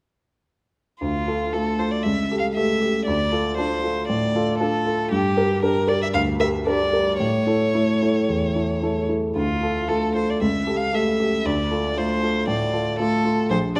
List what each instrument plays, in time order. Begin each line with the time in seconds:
1.01 grand piano D2, violin F4
1.27 grand piano F4 A4
1.53 grand piano A3 F4 A4, violin A4
1.79 grand piano F4 A4, violin C5
1.91 violin D5
2.03 grand piano C#2, violin E5
2.31 grand piano G4 A4
2.39 violin F5
2.55 grand piano A3 G4 A4, violin E5
2.81 grand piano G4 A4
3.06 grand piano D2, violin D5
3.32 grand piano F4 A4
3.57 grand piano D4 F4 A4, violin C5
3.84 grand piano F4 A4
4.07 grand piano A2, violin D5
4.35 grand piano F4 A4
4.59 grand piano D4 F4 A4, violin A4
4.86 grand piano F4 A4
5.11 grand piano G2, violin G4
5.37 grand piano G4 A#4
5.63 grand piano D4 G4 A#4, violin A#4
5.87 grand piano G4 A#4, violin D5
6.02 violin E5
6.13 grand piano D2, violin F5
6.39 grand piano G4 A#4, violin E5
6.66 grand piano D4 G4 A#4, violin D5
6.93 grand piano G4 A#4
7.20 grand piano A2, violin C#5
7.47 grand piano E4 A4
7.74 grand piano A3 E4 A4
8.02 grand piano E4 A4
8.29 grand piano E2
8.56 grand piano E4 A4
8.82 grand piano A3 E4 A4
9.09 grand piano E4 A4
9.35 grand piano D2, violin F4
9.63 grand piano F4 A4
9.88 grand piano A3 F4 A4, violin A4
10.15 grand piano F4 A4, violin C5
10.30 violin D5
10.41 grand piano C#2, violin E5
10.67 grand piano G4 A4
10.77 violin F5
10.93 grand piano A3 G4 A4, violin E5
11.20 grand piano G4 A4
11.45 grand piano D2, violin D5
11.71 grand piano F4 A4
11.96 grand piano A3 F4 A4, violin C5
12.23 grand piano F4 A4
12.47 grand piano A2, violin D5
12.73 grand piano F4 A4
13.00 grand piano A3 F4 A4, violin A4
13.25 grand piano F4 A4
13.50 grand piano A#1, violin C5
13.76 grand piano D4 G4, violin D5